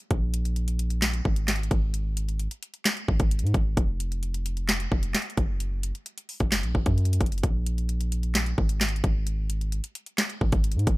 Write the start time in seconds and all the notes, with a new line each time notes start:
0.11 A#1, kick, closed hi-hat
0.34 closed hi-hat
0.45 closed hi-hat
0.56 closed hi-hat
0.68 closed hi-hat
0.79 closed hi-hat
0.90 closed hi-hat
1.02 snare, clap, closed hi-hat
1.14 closed hi-hat
1.25 G#1, kick
1.36 closed hi-hat
1.48 snare, clap, closed hi-hat
1.56 closed hi-hat
1.63 closed hi-hat
1.71 G#1, kick, closed hi-hat
1.94 closed hi-hat
2.17 closed hi-hat
2.29 closed hi-hat
2.40 closed hi-hat
2.51 closed hi-hat
2.63 closed hi-hat
2.74 closed hi-hat
2.85 snare, clap, closed hi-hat
2.97 closed hi-hat
3.08 G#1, kick
3.20 G#1, kick, closed hi-hat
3.31 closed hi-hat
3.39 G#2, closed hi-hat
3.47 closed hi-hat
3.54 G#1, kick, closed hi-hat
3.77 F1, kick, closed hi-hat
4.00 closed hi-hat
4.12 closed hi-hat
4.23 closed hi-hat
4.34 closed hi-hat
4.46 closed hi-hat
4.57 closed hi-hat
4.69 snare, clap, closed hi-hat
4.80 closed hi-hat
4.92 F1, kick
5.03 closed hi-hat
5.14 snare, clap, closed hi-hat
5.22 closed hi-hat
5.30 closed hi-hat
5.37 F#1, kick, closed hi-hat
5.60 closed hi-hat
5.83 closed hi-hat
5.95 closed hi-hat
6.06 closed hi-hat
6.18 closed hi-hat
6.29 open hi-hat
6.40 F#1, kick, closed hi-hat
6.52 snare, clap, closed hi-hat
6.63 A#1, closed hi-hat
6.75 F#1, kick
6.86 F#2, kick, closed hi-hat
6.98 closed hi-hat
7.05 closed hi-hat
7.13 closed hi-hat
7.21 F#1, kick, closed hi-hat
7.26 closed hi-hat
7.32 closed hi-hat
7.38 closed hi-hat
7.43 A#1, kick, closed hi-hat
7.66 closed hi-hat
7.78 closed hi-hat
7.89 closed hi-hat
8.01 closed hi-hat
8.12 closed hi-hat
8.23 closed hi-hat
8.35 snare, clap, closed hi-hat
8.46 closed hi-hat
8.58 G#1, kick
8.69 closed hi-hat
8.81 snare, clap, closed hi-hat
8.88 closed hi-hat
8.96 closed hi-hat
9.04 G#1, kick, closed hi-hat
9.27 closed hi-hat
9.50 closed hi-hat
9.61 closed hi-hat
9.72 closed hi-hat
9.84 closed hi-hat
9.95 closed hi-hat
10.06 closed hi-hat
10.18 snare, clap, closed hi-hat
10.30 closed hi-hat
10.41 G#1, kick
10.52 G#1, kick, closed hi-hat
10.64 closed hi-hat
10.72 closed hi-hat
10.76 G#2, closed hi-hat
10.87 G#1, kick, closed hi-hat